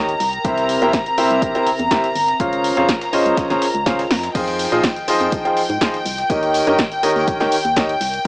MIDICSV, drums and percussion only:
0, 0, Header, 1, 2, 480
1, 0, Start_track
1, 0, Tempo, 487805
1, 439, Time_signature, 4, 2, 24, 8
1, 8139, End_track
2, 0, Start_track
2, 0, Title_t, "Drums"
2, 86, Note_on_c, 9, 42, 39
2, 184, Note_off_c, 9, 42, 0
2, 199, Note_on_c, 9, 38, 53
2, 199, Note_on_c, 9, 42, 70
2, 199, Note_on_c, 9, 46, 82
2, 297, Note_off_c, 9, 38, 0
2, 297, Note_off_c, 9, 42, 0
2, 297, Note_off_c, 9, 46, 0
2, 325, Note_on_c, 9, 42, 37
2, 424, Note_off_c, 9, 42, 0
2, 439, Note_on_c, 9, 36, 109
2, 439, Note_on_c, 9, 42, 93
2, 537, Note_off_c, 9, 36, 0
2, 537, Note_off_c, 9, 42, 0
2, 566, Note_on_c, 9, 38, 53
2, 566, Note_on_c, 9, 42, 41
2, 664, Note_off_c, 9, 38, 0
2, 664, Note_off_c, 9, 42, 0
2, 679, Note_on_c, 9, 42, 65
2, 679, Note_on_c, 9, 46, 96
2, 777, Note_off_c, 9, 42, 0
2, 777, Note_off_c, 9, 46, 0
2, 805, Note_on_c, 9, 42, 41
2, 806, Note_off_c, 9, 42, 0
2, 806, Note_on_c, 9, 42, 38
2, 904, Note_off_c, 9, 42, 0
2, 918, Note_on_c, 9, 42, 95
2, 919, Note_off_c, 9, 42, 0
2, 919, Note_on_c, 9, 36, 107
2, 919, Note_on_c, 9, 38, 106
2, 919, Note_on_c, 9, 42, 79
2, 921, Note_off_c, 9, 38, 0
2, 921, Note_on_c, 9, 38, 115
2, 1017, Note_off_c, 9, 36, 0
2, 1017, Note_off_c, 9, 42, 0
2, 1020, Note_off_c, 9, 38, 0
2, 1045, Note_on_c, 9, 42, 39
2, 1144, Note_off_c, 9, 42, 0
2, 1159, Note_on_c, 9, 38, 39
2, 1159, Note_on_c, 9, 42, 65
2, 1159, Note_on_c, 9, 46, 88
2, 1257, Note_off_c, 9, 38, 0
2, 1257, Note_off_c, 9, 42, 0
2, 1257, Note_off_c, 9, 46, 0
2, 1285, Note_on_c, 9, 38, 44
2, 1286, Note_on_c, 9, 42, 39
2, 1383, Note_off_c, 9, 38, 0
2, 1384, Note_off_c, 9, 42, 0
2, 1399, Note_on_c, 9, 36, 113
2, 1399, Note_on_c, 9, 42, 88
2, 1400, Note_off_c, 9, 42, 0
2, 1400, Note_on_c, 9, 42, 89
2, 1497, Note_off_c, 9, 36, 0
2, 1498, Note_off_c, 9, 42, 0
2, 1526, Note_on_c, 9, 42, 39
2, 1625, Note_off_c, 9, 42, 0
2, 1639, Note_on_c, 9, 38, 50
2, 1639, Note_on_c, 9, 42, 67
2, 1640, Note_on_c, 9, 46, 92
2, 1737, Note_off_c, 9, 38, 0
2, 1737, Note_off_c, 9, 42, 0
2, 1738, Note_off_c, 9, 46, 0
2, 1766, Note_on_c, 9, 42, 38
2, 1864, Note_off_c, 9, 42, 0
2, 1879, Note_on_c, 9, 36, 109
2, 1879, Note_on_c, 9, 38, 118
2, 1879, Note_on_c, 9, 42, 87
2, 1880, Note_off_c, 9, 42, 0
2, 1880, Note_on_c, 9, 42, 94
2, 1882, Note_off_c, 9, 38, 0
2, 1882, Note_on_c, 9, 38, 111
2, 1977, Note_off_c, 9, 36, 0
2, 1978, Note_off_c, 9, 42, 0
2, 1981, Note_off_c, 9, 38, 0
2, 2005, Note_on_c, 9, 38, 50
2, 2006, Note_on_c, 9, 42, 40
2, 2104, Note_off_c, 9, 38, 0
2, 2104, Note_off_c, 9, 42, 0
2, 2119, Note_on_c, 9, 42, 65
2, 2119, Note_on_c, 9, 46, 86
2, 2217, Note_off_c, 9, 42, 0
2, 2218, Note_off_c, 9, 46, 0
2, 2246, Note_on_c, 9, 38, 45
2, 2246, Note_on_c, 9, 42, 38
2, 2344, Note_off_c, 9, 38, 0
2, 2344, Note_off_c, 9, 42, 0
2, 2359, Note_on_c, 9, 36, 112
2, 2359, Note_on_c, 9, 42, 93
2, 2457, Note_off_c, 9, 36, 0
2, 2457, Note_off_c, 9, 42, 0
2, 2485, Note_on_c, 9, 42, 43
2, 2583, Note_off_c, 9, 42, 0
2, 2599, Note_on_c, 9, 46, 102
2, 2697, Note_off_c, 9, 46, 0
2, 2725, Note_on_c, 9, 42, 38
2, 2824, Note_off_c, 9, 42, 0
2, 2839, Note_on_c, 9, 36, 111
2, 2839, Note_on_c, 9, 42, 58
2, 2842, Note_on_c, 9, 38, 116
2, 2937, Note_off_c, 9, 36, 0
2, 2937, Note_off_c, 9, 42, 0
2, 2940, Note_off_c, 9, 38, 0
2, 2965, Note_on_c, 9, 38, 103
2, 2965, Note_on_c, 9, 42, 40
2, 3064, Note_off_c, 9, 38, 0
2, 3064, Note_off_c, 9, 42, 0
2, 3079, Note_on_c, 9, 38, 42
2, 3079, Note_on_c, 9, 46, 86
2, 3177, Note_off_c, 9, 38, 0
2, 3177, Note_off_c, 9, 46, 0
2, 3206, Note_on_c, 9, 42, 39
2, 3304, Note_off_c, 9, 42, 0
2, 3319, Note_on_c, 9, 36, 114
2, 3319, Note_on_c, 9, 38, 101
2, 3319, Note_on_c, 9, 42, 77
2, 3417, Note_off_c, 9, 36, 0
2, 3418, Note_off_c, 9, 38, 0
2, 3418, Note_off_c, 9, 42, 0
2, 3446, Note_on_c, 9, 38, 43
2, 3446, Note_on_c, 9, 42, 38
2, 3449, Note_off_c, 9, 38, 0
2, 3449, Note_on_c, 9, 38, 35
2, 3544, Note_off_c, 9, 42, 0
2, 3547, Note_off_c, 9, 38, 0
2, 3559, Note_on_c, 9, 38, 98
2, 3559, Note_on_c, 9, 42, 76
2, 3559, Note_on_c, 9, 46, 99
2, 3658, Note_off_c, 9, 38, 0
2, 3658, Note_off_c, 9, 42, 0
2, 3658, Note_off_c, 9, 46, 0
2, 3686, Note_on_c, 9, 42, 38
2, 3784, Note_off_c, 9, 42, 0
2, 3799, Note_on_c, 9, 36, 110
2, 3799, Note_on_c, 9, 38, 105
2, 3799, Note_on_c, 9, 42, 80
2, 3802, Note_off_c, 9, 38, 0
2, 3802, Note_on_c, 9, 38, 117
2, 3897, Note_off_c, 9, 36, 0
2, 3898, Note_off_c, 9, 42, 0
2, 3900, Note_off_c, 9, 38, 0
2, 3926, Note_on_c, 9, 38, 100
2, 3926, Note_on_c, 9, 42, 40
2, 4024, Note_off_c, 9, 38, 0
2, 4024, Note_off_c, 9, 42, 0
2, 4039, Note_on_c, 9, 38, 102
2, 4039, Note_on_c, 9, 42, 79
2, 4039, Note_on_c, 9, 46, 85
2, 4138, Note_off_c, 9, 38, 0
2, 4138, Note_off_c, 9, 42, 0
2, 4138, Note_off_c, 9, 46, 0
2, 4166, Note_on_c, 9, 38, 102
2, 4166, Note_on_c, 9, 42, 78
2, 4264, Note_off_c, 9, 38, 0
2, 4264, Note_off_c, 9, 42, 0
2, 4279, Note_on_c, 9, 36, 112
2, 4279, Note_on_c, 9, 42, 91
2, 4279, Note_on_c, 9, 49, 72
2, 4280, Note_on_c, 9, 54, 48
2, 4378, Note_off_c, 9, 36, 0
2, 4378, Note_off_c, 9, 42, 0
2, 4378, Note_off_c, 9, 49, 0
2, 4378, Note_off_c, 9, 54, 0
2, 4406, Note_on_c, 9, 38, 51
2, 4406, Note_on_c, 9, 42, 43
2, 4411, Note_on_c, 9, 54, 24
2, 4504, Note_off_c, 9, 38, 0
2, 4504, Note_off_c, 9, 42, 0
2, 4509, Note_off_c, 9, 54, 0
2, 4519, Note_on_c, 9, 42, 67
2, 4519, Note_on_c, 9, 46, 100
2, 4521, Note_on_c, 9, 54, 88
2, 4618, Note_off_c, 9, 42, 0
2, 4618, Note_off_c, 9, 46, 0
2, 4619, Note_off_c, 9, 54, 0
2, 4646, Note_on_c, 9, 42, 40
2, 4649, Note_on_c, 9, 54, 38
2, 4744, Note_off_c, 9, 42, 0
2, 4747, Note_off_c, 9, 54, 0
2, 4759, Note_on_c, 9, 36, 113
2, 4759, Note_on_c, 9, 38, 110
2, 4759, Note_on_c, 9, 42, 94
2, 4762, Note_off_c, 9, 38, 0
2, 4762, Note_on_c, 9, 38, 120
2, 4763, Note_on_c, 9, 54, 51
2, 4857, Note_off_c, 9, 42, 0
2, 4858, Note_off_c, 9, 36, 0
2, 4860, Note_off_c, 9, 38, 0
2, 4861, Note_off_c, 9, 54, 0
2, 4882, Note_on_c, 9, 54, 26
2, 4886, Note_on_c, 9, 42, 41
2, 4980, Note_off_c, 9, 54, 0
2, 4985, Note_off_c, 9, 42, 0
2, 4998, Note_on_c, 9, 54, 92
2, 4999, Note_on_c, 9, 38, 39
2, 4999, Note_on_c, 9, 42, 69
2, 5000, Note_on_c, 9, 46, 96
2, 5096, Note_off_c, 9, 54, 0
2, 5098, Note_off_c, 9, 38, 0
2, 5098, Note_off_c, 9, 42, 0
2, 5098, Note_off_c, 9, 46, 0
2, 5125, Note_on_c, 9, 38, 43
2, 5126, Note_on_c, 9, 42, 40
2, 5127, Note_on_c, 9, 54, 38
2, 5224, Note_off_c, 9, 38, 0
2, 5224, Note_off_c, 9, 42, 0
2, 5226, Note_off_c, 9, 54, 0
2, 5236, Note_on_c, 9, 54, 46
2, 5239, Note_on_c, 9, 36, 122
2, 5239, Note_on_c, 9, 42, 95
2, 5334, Note_off_c, 9, 54, 0
2, 5338, Note_off_c, 9, 36, 0
2, 5338, Note_off_c, 9, 42, 0
2, 5366, Note_on_c, 9, 42, 39
2, 5371, Note_on_c, 9, 54, 25
2, 5464, Note_off_c, 9, 42, 0
2, 5469, Note_off_c, 9, 54, 0
2, 5479, Note_on_c, 9, 38, 49
2, 5479, Note_on_c, 9, 42, 65
2, 5479, Note_on_c, 9, 46, 97
2, 5482, Note_on_c, 9, 54, 98
2, 5577, Note_off_c, 9, 38, 0
2, 5577, Note_off_c, 9, 42, 0
2, 5578, Note_off_c, 9, 46, 0
2, 5580, Note_off_c, 9, 54, 0
2, 5598, Note_on_c, 9, 54, 35
2, 5606, Note_on_c, 9, 42, 40
2, 5696, Note_off_c, 9, 54, 0
2, 5704, Note_off_c, 9, 42, 0
2, 5719, Note_on_c, 9, 36, 110
2, 5719, Note_on_c, 9, 38, 117
2, 5719, Note_on_c, 9, 42, 92
2, 5720, Note_off_c, 9, 42, 0
2, 5720, Note_on_c, 9, 42, 95
2, 5720, Note_on_c, 9, 54, 51
2, 5723, Note_off_c, 9, 38, 0
2, 5723, Note_on_c, 9, 38, 122
2, 5818, Note_off_c, 9, 36, 0
2, 5818, Note_off_c, 9, 42, 0
2, 5818, Note_off_c, 9, 54, 0
2, 5821, Note_off_c, 9, 38, 0
2, 5842, Note_on_c, 9, 54, 28
2, 5846, Note_on_c, 9, 38, 46
2, 5846, Note_on_c, 9, 42, 42
2, 5940, Note_off_c, 9, 54, 0
2, 5944, Note_off_c, 9, 38, 0
2, 5945, Note_off_c, 9, 42, 0
2, 5959, Note_on_c, 9, 42, 67
2, 5960, Note_on_c, 9, 46, 88
2, 5961, Note_on_c, 9, 54, 79
2, 6057, Note_off_c, 9, 42, 0
2, 6058, Note_off_c, 9, 46, 0
2, 6060, Note_off_c, 9, 54, 0
2, 6085, Note_on_c, 9, 38, 47
2, 6086, Note_on_c, 9, 42, 40
2, 6086, Note_on_c, 9, 54, 37
2, 6184, Note_off_c, 9, 38, 0
2, 6184, Note_off_c, 9, 54, 0
2, 6185, Note_off_c, 9, 42, 0
2, 6197, Note_on_c, 9, 54, 50
2, 6199, Note_on_c, 9, 36, 118
2, 6199, Note_on_c, 9, 42, 84
2, 6200, Note_off_c, 9, 42, 0
2, 6200, Note_on_c, 9, 42, 89
2, 6296, Note_off_c, 9, 54, 0
2, 6298, Note_off_c, 9, 36, 0
2, 6298, Note_off_c, 9, 42, 0
2, 6326, Note_on_c, 9, 42, 40
2, 6329, Note_on_c, 9, 54, 26
2, 6425, Note_off_c, 9, 42, 0
2, 6427, Note_off_c, 9, 54, 0
2, 6439, Note_on_c, 9, 42, 70
2, 6440, Note_on_c, 9, 46, 105
2, 6447, Note_on_c, 9, 54, 101
2, 6537, Note_off_c, 9, 42, 0
2, 6538, Note_off_c, 9, 46, 0
2, 6545, Note_off_c, 9, 54, 0
2, 6563, Note_on_c, 9, 54, 37
2, 6566, Note_on_c, 9, 42, 37
2, 6661, Note_off_c, 9, 54, 0
2, 6665, Note_off_c, 9, 42, 0
2, 6673, Note_on_c, 9, 54, 48
2, 6679, Note_on_c, 9, 36, 117
2, 6679, Note_on_c, 9, 38, 108
2, 6679, Note_on_c, 9, 42, 91
2, 6682, Note_off_c, 9, 38, 0
2, 6682, Note_on_c, 9, 38, 120
2, 6772, Note_off_c, 9, 54, 0
2, 6778, Note_off_c, 9, 36, 0
2, 6778, Note_off_c, 9, 42, 0
2, 6781, Note_off_c, 9, 38, 0
2, 6806, Note_on_c, 9, 42, 39
2, 6806, Note_on_c, 9, 54, 29
2, 6904, Note_off_c, 9, 42, 0
2, 6905, Note_off_c, 9, 54, 0
2, 6918, Note_on_c, 9, 54, 87
2, 6919, Note_on_c, 9, 42, 66
2, 6919, Note_on_c, 9, 46, 96
2, 7017, Note_off_c, 9, 42, 0
2, 7017, Note_off_c, 9, 54, 0
2, 7018, Note_off_c, 9, 46, 0
2, 7042, Note_on_c, 9, 54, 40
2, 7045, Note_on_c, 9, 38, 52
2, 7046, Note_on_c, 9, 42, 39
2, 7140, Note_off_c, 9, 54, 0
2, 7144, Note_off_c, 9, 38, 0
2, 7145, Note_off_c, 9, 42, 0
2, 7155, Note_on_c, 9, 54, 46
2, 7159, Note_on_c, 9, 36, 122
2, 7159, Note_on_c, 9, 42, 95
2, 7253, Note_off_c, 9, 54, 0
2, 7258, Note_off_c, 9, 36, 0
2, 7258, Note_off_c, 9, 42, 0
2, 7279, Note_on_c, 9, 54, 27
2, 7285, Note_on_c, 9, 38, 41
2, 7286, Note_on_c, 9, 42, 38
2, 7289, Note_off_c, 9, 38, 0
2, 7289, Note_on_c, 9, 38, 37
2, 7377, Note_off_c, 9, 54, 0
2, 7385, Note_off_c, 9, 42, 0
2, 7388, Note_off_c, 9, 38, 0
2, 7396, Note_on_c, 9, 54, 94
2, 7398, Note_on_c, 9, 42, 67
2, 7399, Note_on_c, 9, 46, 104
2, 7494, Note_off_c, 9, 54, 0
2, 7497, Note_off_c, 9, 42, 0
2, 7498, Note_off_c, 9, 46, 0
2, 7526, Note_on_c, 9, 42, 38
2, 7526, Note_on_c, 9, 54, 37
2, 7624, Note_off_c, 9, 42, 0
2, 7624, Note_off_c, 9, 54, 0
2, 7638, Note_on_c, 9, 38, 116
2, 7638, Note_on_c, 9, 42, 90
2, 7639, Note_off_c, 9, 42, 0
2, 7639, Note_on_c, 9, 36, 119
2, 7639, Note_on_c, 9, 42, 93
2, 7642, Note_off_c, 9, 38, 0
2, 7642, Note_on_c, 9, 38, 117
2, 7644, Note_on_c, 9, 54, 49
2, 7737, Note_off_c, 9, 36, 0
2, 7738, Note_off_c, 9, 42, 0
2, 7741, Note_off_c, 9, 38, 0
2, 7742, Note_off_c, 9, 54, 0
2, 7764, Note_on_c, 9, 54, 28
2, 7765, Note_on_c, 9, 42, 43
2, 7766, Note_off_c, 9, 42, 0
2, 7766, Note_on_c, 9, 42, 39
2, 7863, Note_off_c, 9, 54, 0
2, 7864, Note_off_c, 9, 42, 0
2, 7878, Note_on_c, 9, 38, 50
2, 7878, Note_on_c, 9, 42, 65
2, 7878, Note_on_c, 9, 54, 86
2, 7879, Note_on_c, 9, 46, 92
2, 7977, Note_off_c, 9, 38, 0
2, 7977, Note_off_c, 9, 42, 0
2, 7977, Note_off_c, 9, 54, 0
2, 7978, Note_off_c, 9, 46, 0
2, 8003, Note_on_c, 9, 54, 42
2, 8006, Note_on_c, 9, 42, 38
2, 8101, Note_off_c, 9, 54, 0
2, 8104, Note_off_c, 9, 42, 0
2, 8139, End_track
0, 0, End_of_file